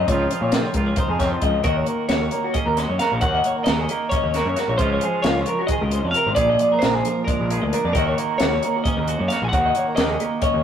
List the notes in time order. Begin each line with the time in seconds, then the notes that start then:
0.07 C#2 C#3 F3 C#5, kick, closed hi-hat
0.11 C4 D#4 F4
0.31 F3 C5, closed hi-hat
0.41 A#2 C#5
0.52 C4 C5, snare, closed hi-hat
0.63 C#5
0.74 C#2 F4 A#4, kick, closed hi-hat
0.86 C#5
0.96 D#4 C5, kick, closed hi-hat
1.08 F2 G#4
1.19 C4 C#5, kick, snare, closed hi-hat
1.30 C5
1.42 C#2 F3 D#5, kick, closed hi-hat
1.64 D#2 D#3 F#4 A#4 D#5, kick, closed hi-hat
1.76 C#5
1.86 A#3 A#4, closed hi-hat
2.09 D#2 F#4 C#5, snare, closed hi-hat
2.21 C#5
2.31 A#3 A#4, closed hi-hat
2.44 F#4
2.54 C#4 G#4 D#5, kick, closed hi-hat
2.66 D#2 A#4
2.77 F#4 C5, snare, closed hi-hat
2.89 F#2 C#5
2.99 F#4 A#4 F5, snare, closed hi-hat
3.12 A#1 C5
3.21 D#2 D#3 F#4 C#5 F#5, kick, closed hi-hat
3.34 D#5
3.44 A#3 C#5, closed hi-hat
3.57 A#4
3.64 D#2 F#4 A#4 D#5, snare, closed hi-hat
3.78 G#4
3.89 A#3 A#4, closed hi-hat
4.09 C#4 C#5 D#5, kick, closed hi-hat
4.24 D#2
4.34 F#4 A#4, snare, closed hi-hat
4.45 F#2 C#5
4.56 F#4 A#4, snare, closed hi-hat
4.68 A#1 C#5
4.78 C#2 C#3 F3 G#3 C#4 F4 C5 D#5, kick, closed hi-hat
4.92 C#5
5.01 F3 G#4, closed hi-hat
5.22 C#2 C#4 F4 C#5, snare, closed hi-hat
5.37 C5
5.46 F3 A#4, closed hi-hat
5.59 F#4
5.67 D#3 G#4 D#5, kick, closed hi-hat
5.81 C#2 A#4
5.90 C#3 C5, closed hi-hat
6.03 F2 C#5
6.11 C3 F5, closed hi-hat
6.16 A#4
6.26 G#1 C5
6.35 A#1 A#2 G#4 D5, kick, closed hi-hat
6.50 D#5
6.59 F3 D5, closed hi-hat
6.72 A#4
6.79 D4 C5, snare, closed hi-hat
6.83 A#1 A#4
6.93 G#4
7.04 F3 A#4, closed hi-hat
7.24 G#3 A#4 D5, kick, closed hi-hat
7.40 A#1
7.50 G#4 A#4, closed hi-hat
7.61 D2 D5
7.73 D4 A#4, closed hi-hat
7.84 F2 D5
7.93 D#2 D#3 F#4 A#4 D#5, kick, closed hi-hat
8.07 C#5
8.18 A#3 A#4, closed hi-hat
8.38 D#2 F#4 C#5, snare, closed hi-hat
8.42 F#4
8.53 C#5
8.63 A#3 A#4, closed hi-hat
8.76 F#4
8.84 C#4 G#4 D#5, kick, closed hi-hat
8.97 D#2 A#4
9.08 F#4 C5, closed hi-hat
9.19 F#2 C#5
9.28 F#4 A#4 F5, snare, closed hi-hat
9.42 A#1 C5 G#5
9.49 F#5, kick
9.53 D#2 D#3 F#4 C#5, closed hi-hat
9.66 D#5
9.75 A#3 C#5, closed hi-hat
9.87 A#4
9.96 D#2 F#4 A#4 D#5, snare, closed hi-hat
10.09 G#4
10.20 A#3 A#4, closed hi-hat
10.42 C#4 C#5 D#5, kick, closed hi-hat
10.54 D#2